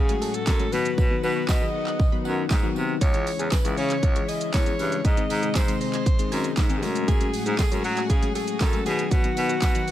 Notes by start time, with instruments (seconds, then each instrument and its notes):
Already playing: analog synth pad A2 F#3 F#4, baritone saxophone C#3, alto saxophone G#4
0.09 tine electric piano F#3 G#3 A3 C#4 F#4, synth pluck C#5, closed hi-hat, shaker
0.22 synth pluck A4, open hi-hat, tambourine, shaker
0.34 alto saxophone A4, closed hi-hat, shaker
0.47 baritone saxophone F#2, synth pluck F#4, kick, snare, clap, closed hi-hat, tambourine, shaker
0.60 tine electric piano F#3 G#3 A3 C#4 F#4, synth pluck C#4, closed hi-hat, shaker
0.72 baritone saxophone B2, tine electric piano D#3 F#3 B3 D#4 F#4, analog synth pad D#3 B3 F#4, alto saxophone B4, open hi-hat, tambourine, shaker
0.85 closed hi-hat, shaker
0.98 baritone saxophone B2, synth pluck F#3, kick, tambourine
1.10 tine electric piano D#3 F#3 B3 D#4 F#4, synth pluck B3
1.23 baritone saxophone B2, alto saxophone B4, tambourine
1.36 synth pluck F#4
1.49 baritone saxophone B2, alto saxophone D#5, synth pluck F#5, kick, snare, clap, tambourine
1.61 tine electric piano D#3 F#3 B3 D#4 G#4, synth pluck B5
1.87 synth pluck F#6, clap
2.00 kick, tambourine
2.12 tine electric piano D#3 F#3 B3 D#4 F#4, synth pluck B5
2.25 baritone saxophone F#2, synth pluck F#5, tambourine
2.50 baritone saxophone G#2, synth pluck D#4, kick, snare, clap, tambourine
2.63 tine electric piano D#3 F#3 B3 D#4 F#4, synth pluck B3
2.76 baritone saxophone C3, tambourine
3.01 baritone saxophone C#2, analog synth pad C#3 G#3 E4, synth pluck G#3, alto saxophone C#5, kick, closed hi-hat, tambourine, shaker
3.14 tine electric piano E3 G#3 C#4 E4 G#4, synth pluck C#4, closed hi-hat, shaker
3.27 open hi-hat, tambourine, shaker
3.39 baritone saxophone E2, synth pluck G#4, closed hi-hat, shaker
3.52 alto saxophone B4, synth pluck G#5, kick, snare, clap, closed hi-hat, tambourine, shaker
3.65 baritone saxophone C#2, tine electric piano E3 G#3 C#4 E4 G#4, synth pluck C#6, closed hi-hat, shaker
3.77 baritone saxophone C#3, alto saxophone C#5, open hi-hat, shaker
3.90 synth pluck G#6, clap, closed hi-hat, shaker
4.03 baritone saxophone C#2, kick, closed hi-hat, shaker
4.15 tine electric piano E3 G#3 C#4 E4 G#4, synth pluck C#6, closed hi-hat, shaker
4.28 alto saxophone D#5, synth pluck G#5, open hi-hat, tambourine, shaker
4.41 closed hi-hat, shaker
4.54 baritone saxophone E2, synth pluck E4, alto saxophone C#5, kick, snare, clap, closed hi-hat, tambourine, shaker
4.66 tine electric piano E3 G#3 C#4 E4 G#4, synth pluck C#4, closed hi-hat, shaker
4.79 baritone saxophone G2, open hi-hat, tambourine, shaker
4.92 closed hi-hat, shaker
5.05 baritone saxophone G#2, analog synth pad C3 D#4, synth pluck G#3, alto saxophone D#5, kick, closed hi-hat, tambourine, shaker
5.17 tine electric piano D#3 G#3 C4 D#4 G#4, synth pluck C4, closed hi-hat, shaker
5.30 baritone saxophone G#2, open hi-hat, tambourine, shaker
5.43 synth pluck G#4, closed hi-hat, shaker
5.55 baritone saxophone G#2, alto saxophone C5, synth pluck G#5, kick, snare, clap, closed hi-hat, tambourine, shaker
5.68 tine electric piano D#3 G#3 C4 D#4 G#4, synth pluck C6, closed hi-hat, shaker
5.81 alto saxophone C5, open hi-hat, shaker
5.93 synth pluck G#6, clap, closed hi-hat, shaker
6.06 kick, closed hi-hat, shaker
6.19 tine electric piano D#3 G#3 C4 D#4 G#4, synth pluck C6, closed hi-hat, shaker
6.32 baritone saxophone F#2, synth pluck G#5, open hi-hat, tambourine, shaker
6.44 closed hi-hat, shaker
6.57 baritone saxophone G#2, synth pluck D#4, kick, snare, clap, closed hi-hat, tambourine, shaker
6.70 tine electric piano D#3 G#3 C4 D#4 G#4, synth pluck C4, closed hi-hat, shaker
6.82 baritone saxophone F#2, analog synth pad A2 F#4 G#4, tine electric piano F#3 G#3 A3 C#4 F#4, open hi-hat, tambourine, shaker
6.95 closed hi-hat, shaker
7.08 synth pluck A3, alto saxophone G#4, kick, closed hi-hat, tambourine, shaker
7.20 tine electric piano F#3 G#3 A3 C#4 F#4, synth pluck C#4, closed hi-hat, shaker
7.33 open hi-hat, tambourine, shaker
7.46 baritone saxophone G#2, synth pluck G#4, closed hi-hat, shaker
7.59 alto saxophone G#4, synth pluck A4, kick, snare, clap, closed hi-hat, tambourine, shaker
7.71 baritone saxophone F#2, tine electric piano F#3 G#3 A3 C#4 F#4, synth pluck C#5, closed hi-hat, shaker
7.84 baritone saxophone F#3, alto saxophone F#4, open hi-hat, shaker
7.97 synth pluck G#5, clap, closed hi-hat, shaker
8.10 baritone saxophone C#3, alto saxophone G#4, kick, closed hi-hat, tambourine, shaker
8.22 tine electric piano F#3 G#3 A3 C#4 F#4, synth pluck C#5, closed hi-hat, shaker
8.35 alto saxophone G#4, synth pluck A4, open hi-hat, tambourine, shaker
8.48 closed hi-hat, shaker
8.60 baritone saxophone F#2, synth pluck F#4, alto saxophone A4, kick, snare, clap, closed hi-hat, tambourine, shaker
8.73 tine electric piano F#3 G#3 A3 C#4 F#4, synth pluck C#4, closed hi-hat, shaker
8.86 baritone saxophone B2, tine electric piano D#3 F#3 B3 D#4 F#4, analog synth pad D#3 B3, alto saxophone G#4, open hi-hat, tambourine, shaker
8.99 closed hi-hat, shaker
9.11 baritone saxophone B2, synth pluck F#3, alto saxophone F#4, kick, closed hi-hat, tambourine, shaker
9.24 tine electric piano D#3 F#3 B3 D#4 F#4, synth pluck B3, closed hi-hat, shaker
9.37 baritone saxophone B2, open hi-hat, tambourine, shaker
9.49 synth pluck F#4, closed hi-hat, shaker
9.62 baritone saxophone B2, synth pluck F#5, kick, snare, clap, closed hi-hat, tambourine, shaker
9.75 tine electric piano D#3 F#3 B3 D#4 F#4, synth pluck B5, closed hi-hat, shaker
9.88 open hi-hat, tambourine, shaker